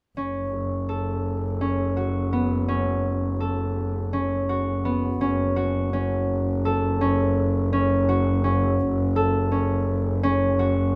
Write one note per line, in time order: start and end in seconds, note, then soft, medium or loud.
0.17 5.17 F#1 medium
0.17 1.61 C#4 medium
0.89 3.08 A4 medium
1.61 2.68 C#4 medium
1.97 4.40 F#4 soft
2.33 4.85 B3 medium
2.68 4.13 C#4 medium
3.40 5.60 A4 medium
4.13 5.21 C#4 medium
4.49 5.56 F#4 medium
4.85 7.96 B3 medium
5.21 10.24 F#1 medium
5.21 5.93 C#4 medium
5.56 8.00 F#4 medium
5.93 7.01 C#4 medium
6.65 8.85 A4 medium
7.01 7.72 C#4 medium
7.73 8.44 C#4 medium
8.09 10.52 F#4 medium
8.44 9.51 C#4 medium
9.16 10.95 A4 medium
9.52 10.23 C#4 medium
10.23 10.95 F#1 medium
10.23 10.95 C#4 medium
10.59 10.95 F#4 medium